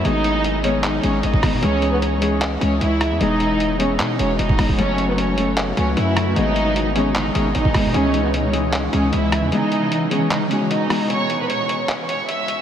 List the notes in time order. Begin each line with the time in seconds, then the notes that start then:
Already playing: A3 C#4 B4
0.04 G#1 D#3 G#3 B3 D#4 G#4 D#5, closed hi-hat
0.24 closed hi-hat
0.44 closed hi-hat
0.63 D#3 G#3 B3 C#4 G#4 C#5, closed hi-hat
0.83 D#4 D#5, clap, closed hi-hat
1.02 G#1 D#3 G#3 B3 C#4 G#4 C#5, closed hi-hat
1.23 G#1 D#4 D#5, closed hi-hat
1.34 kick
1.42 D#3 G#3 B3 G#4, kick, cross-stick, open hi-hat
1.53 B2
1.62 C#2 E3 G#3 C#4 G#4 C#5, closed hi-hat
1.82 closed hi-hat
1.92 B3 B4
2.02 C#4 C#5, closed hi-hat
2.21 E3 G#3 C#4 G#4, closed hi-hat
2.42 clap, closed hi-hat
2.60 C#2 E3 G#3 C#4 G#4 C#5, closed hi-hat
2.81 C#2 E4 E5, closed hi-hat
3.01 cross-stick, closed hi-hat
3.11 E2
3.20 E1 E3 G#3 B3 D#4 G#4 D#5, closed hi-hat
3.40 closed hi-hat
3.60 closed hi-hat
3.78 E3 G#3 B3 C#4 G#4 C#5, closed hi-hat
3.99 B2 D#4 D#5, clap, closed hi-hat
4.19 E1 E3 G#3 B3 C#4 F#4 C#5, closed hi-hat
4.39 E1 D#4 D#5, closed hi-hat
4.49 kick
4.58 E3 G#3 B3 G#4, kick, cross-stick, open hi-hat
4.69 kick
4.77 F#1 C#3 F#3 A3 C#4 F#4 A4 C#5, closed hi-hat
4.98 closed hi-hat
5.09 B3 B4
5.18 C#4 C#5, closed hi-hat
5.38 F#3 A3 C#4 A4, closed hi-hat
5.57 clap, closed hi-hat
5.76 C#2 F#3 A3 C#4 B4 C#5, closed hi-hat
5.97 F#2 E4 E5, closed hi-hat
6.17 cross-stick, closed hi-hat
6.35 G#1 B2 D#3 G#3 B3 D#4 G#4 D#5, closed hi-hat
6.56 closed hi-hat
6.76 closed hi-hat
6.95 D#3 G#3 B3 C#4 G#4 C#5, closed hi-hat
7.15 D#4 D#5, clap, closed hi-hat
7.34 G#1 D#3 G#3 B3 C#4 G#4 C#5, closed hi-hat
7.55 G#1 D#4 D#5, closed hi-hat
7.65 kick
7.74 D#3 G#3 B3 G#4, kick, cross-stick, open hi-hat
7.85 B2
7.94 C#2 C#3 E3 G#3 C#4 G#4 C#5, closed hi-hat
8.14 closed hi-hat
8.24 B3 B4
8.34 C#4 C#5, closed hi-hat
8.52 E3 G#3 C#4 G#4, closed hi-hat
8.73 clap, closed hi-hat
8.92 C#2 E3 G#3 C#4 G#4 C#5, closed hi-hat
9.13 C#2 E4 E5, closed hi-hat
9.32 cross-stick, closed hi-hat
9.43 E2
9.51 B2 E3 G#3 B3 D#4 G#4 D#5, closed hi-hat
9.72 closed hi-hat
9.92 closed hi-hat
10.10 E3 G#3 B3 C#4 G#4 C#5, closed hi-hat
10.31 D#4 D#5, clap, closed hi-hat
10.50 E3 G#3 B3 C#4 F#4 C#5, closed hi-hat
10.70 D#4 D#5, closed hi-hat
10.89 E3 G#3 B3 G#4, cross-stick, open hi-hat
11.10 C#5 C#6, closed hi-hat
11.30 closed hi-hat
11.40 B4 B5
11.50 C#5 C#6, closed hi-hat
11.69 closed hi-hat
11.89 clap, closed hi-hat
12.09 C#5 C#6, closed hi-hat
12.28 E5 E6, closed hi-hat
12.48 closed hi-hat